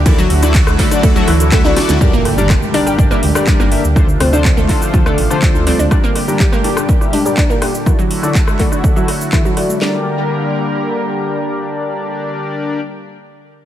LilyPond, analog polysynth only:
\new Staff \with { instrumentName = "Analog polysynth" } { \time 4/4 \key g \dorian \tempo 4 = 123 <d e' fis' a' d''>16 r8 <d e' fis' a' d''>16 r8 <d e' fis' a' d''>8. <d e' fis' a' e''>16 r8 <d e' fis' a' e''>16 <d e' fis' a' e''>16 <e' fis' a' d''>8 | <g d' g' bes' d''>16 r8 <g d' g' bes' d''>16 r8 <g d' g' bes' d''>8. <g d' g' bes' e''>16 r16 <g d' g' bes' d''>8. <d d' g' bes' e''>16 r16 | <d d' f' a' c''>16 r8 <d d' f' a' c''>16 r8 <d d' f' a' c''>8. <d d' f' a' d''>16 r16 <d d' f' a' c''>8. <g d' f' a' d''>16 r16 | <g d' g' bes' d''>16 r8 <g d' g' bes' d''>16 r8 <g d' g' bes' d''>8. <g d' g' bes' e''>16 r16 <g d' g' bes' d''>8. <d d' g' bes' e''>16 r16 |
<d e' fis' a' d''>16 r8 <d e' fis' a' d''>16 r8 <d e' fis' a' d''>8. <d e' fis' a' e''>16 r8 <d e' fis' a' e''>16 <d e' fis' a'>16 <e' fis' a' d''>8 | <d' g' bes' d''>1~ | <d' g' bes' d''>1 | }